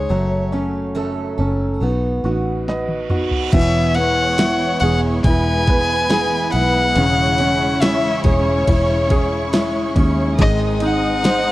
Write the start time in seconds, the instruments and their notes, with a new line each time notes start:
Already playing: grand piano G#3 G#4, violin C#5
0.09 fingered electric bass F#1, steel-string acoustic guitar F#2 C#3 F#3 A3 C#4 A4, grand piano F#3
0.52 steel-string acoustic guitar F#2 C#3 F#3 A3 C#4 A4, grand piano C#4
0.95 steel-string acoustic guitar F#2 C#3 F#3 A3 C#4 A4, grand piano A4
1.38 fingered electric bass F#1, steel-string acoustic guitar F#3 A3 C#4 A4, grand piano C#4
1.80 fingered electric bass B1, steel-string acoustic guitar F#3 B3 D#4 F#4, grand piano B3, reverse cymbal
2.24 fingered electric bass A1, steel-string acoustic guitar B3 D#4 F#4, grand piano F#4
2.68 grand piano B4 D#5, snare
2.88 high tom
3.10 steel-string acoustic guitar B3 D#4 F#4, grand piano F#4, mid tom
3.31 floor tom
3.52 fingered electric bass E1, steel-string acoustic guitar E2 B2 E3 G#3 B3 G#4, grand piano E3, string section G#3 B3 E4, violin section C#5 C#6, violin E5, kick, crash, ride
3.95 steel-string acoustic guitar E3 G#3 B3 G#4, grand piano B3, violin F#5, ride
4.38 steel-string acoustic guitar E3 G#3 B3 G#4, grand piano E4, snare, ride
4.80 fingered electric bass E1, steel-string acoustic guitar E3 G#3 B3 G#4, grand piano G#4, violin F#5, ride
5.23 fingered electric bass E1, grand piano E4, violin section B4 B5, violin G#5, kick, ride
5.67 steel-string acoustic guitar E3 G#3 B3 G#4, grand piano B4, kick, ride
6.09 steel-string acoustic guitar E3 G#3 B3 G#4, grand piano G#4, snare, ride
6.51 fingered electric bass B1, grand piano B3, violin F#5, ride
6.95 fingered electric bass E1, grand piano C#3, steel-string acoustic guitar E3 G#3 C#4 G#4, string section C#4, violin section C#5 C#6, ride
7.38 steel-string acoustic guitar G#3 C#4 G#4, grand piano C#4, ride
7.81 steel-string acoustic guitar E3 G#3 C#4 G#4, grand piano E4, violin E5, snare, ride
8.24 fingered electric bass E1, steel-string acoustic guitar G#3 C#4 G#4, grand piano G#4, violin C#5, kick, ride
8.67 fingered electric bass E1, grand piano E4, kick, ride
9.09 steel-string acoustic guitar G#3 C#4 G#4, grand piano G#4, kick, ride
9.53 steel-string acoustic guitar G#3 C#4 G#4, grand piano E4, snare, ride
9.96 fingered electric bass D#2, grand piano C#4, kick, ride
10.38 fingered electric bass G#1, steel-string acoustic guitar G#2 D#3 G#3 C4 D#4 G#4, grand piano G#3, string section C4 D#4, violin section D#5 D#6, violin D#5, kick, ride
10.80 steel-string acoustic guitar G#3 C4 D#4 G#4, grand piano D#4, ride
10.84 violin F#5
11.23 steel-string acoustic guitar G#3 C4 D#4 G#4, grand piano C5, snare, ride